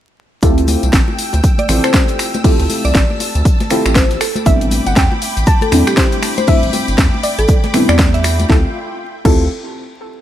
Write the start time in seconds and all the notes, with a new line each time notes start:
0.42 D2 C4 E4 F4 G4 A4 G5 E6, kick, closed hi-hat, tambourine, high bongo, shaker
0.58 closed hi-hat
0.68 open hi-hat, tambourine, high bongo, high conga, shaker
0.83 C2, closed hi-hat, tambourine
0.93 A1, kick, snare, closed hi-hat, tambourine, shaker
1.08 high bongo, high conga
1.18 open hi-hat, tambourine, shaker
1.33 D2, closed hi-hat, tambourine, high bongo
1.44 kick, closed hi-hat, tambourine, shaker
1.58 D5, closed hi-hat, high conga
1.68 A1 C4 E4 F4 G4 A4, finger snap, open hi-hat, tambourine, high bongo, low conga, shaker
1.84 C5, finger snap, closed hi-hat, tambourine
1.93 kick, snare, closed hi-hat, tambourine, high bongo, high conga, shaker
2.08 closed hi-hat
2.19 finger snap, open hi-hat, tambourine, shaker
2.34 closed hi-hat, tambourine, high bongo, high conga
2.44 C4 E4 F4 G4 A4 A5, kick, closed hi-hat, open hi-hat, tambourine
2.59 D2, closed hi-hat, high bongo
2.70 open hi-hat, tambourine, high conga, shaker
2.85 C2 D5, closed hi-hat, tambourine
2.94 A1, kick, snare, closed hi-hat, tambourine, high bongo, shaker
3.10 high conga
3.20 open hi-hat, tambourine, high bongo, shaker
3.35 D2, closed hi-hat, tambourine
3.45 kick, closed hi-hat, tambourine, shaker
3.60 snare, closed hi-hat, high bongo, high conga
3.70 C4 E4 F4 G4 A4, finger snap, open hi-hat, tambourine, low conga, shaker
3.86 A1, finger snap, closed hi-hat, tambourine, high bongo
3.95 C5, kick, snare, closed hi-hat, tambourine, shaker
4.11 snare, closed hi-hat
4.21 A4 G5 B5 D6, finger snap, open hi-hat, tambourine, high bongo, shaker
4.36 closed hi-hat, tambourine, high conga
4.46 A1 G3 B3 C4 D4 E4 E5, kick, closed hi-hat, tambourine, high bongo, shaker
4.61 closed hi-hat
4.71 open hi-hat, tambourine, high conga, shaker
4.86 G1 F#5, closed hi-hat, tambourine, high bongo
4.96 E2 G5, kick, snare, closed hi-hat, tambourine, shaker
5.12 high bongo, high conga
5.22 open hi-hat, tambourine, shaker
5.37 A1, closed hi-hat, tambourine
5.47 A5, kick, closed hi-hat, tambourine, high bongo, shaker
5.61 A4, closed hi-hat, high conga
5.72 E2 G3 A3 C4 D4 E4, finger snap, open hi-hat, tambourine, high bongo, low conga, shaker
5.87 G4, finger snap, closed hi-hat, tambourine
5.97 C5, kick, snare, closed hi-hat, tambourine, high conga, shaker
6.12 closed hi-hat, high bongo
6.23 finger snap, open hi-hat, tambourine, shaker
6.38 C5, closed hi-hat, tambourine, high bongo, high conga
6.47 G3 A3 C4 D4 E4 E5, kick, closed hi-hat, open hi-hat, tambourine
6.63 A1, closed hi-hat
6.73 open hi-hat, tambourine, high bongo, high conga, shaker
6.88 G1, closed hi-hat, tambourine
6.98 E2, kick, snare, closed hi-hat, tambourine, high bongo, shaker
7.14 high conga
7.23 D5, open hi-hat, tambourine, shaker
7.39 A1 A4, closed hi-hat, tambourine, high bongo
7.48 kick, closed hi-hat, tambourine, shaker
7.64 snare, closed hi-hat, high bongo, high conga
7.74 G3 B3 C4 D4 E4, finger snap, open hi-hat, tambourine, low conga, shaker
7.89 E2 D5, finger snap, closed hi-hat, tambourine
7.98 kick, snare, closed hi-hat, tambourine, high bongo, high conga, shaker
8.14 E5, snare, closed hi-hat
8.24 finger snap, open hi-hat, tambourine, high bongo, shaker
8.39 closed hi-hat, tambourine, high conga
8.49 D2 C4 E4 F4 G4 A4 E5 G5 C6, kick, snare
9.25 D2 C4 E4 F4 G4 A4, kick, crash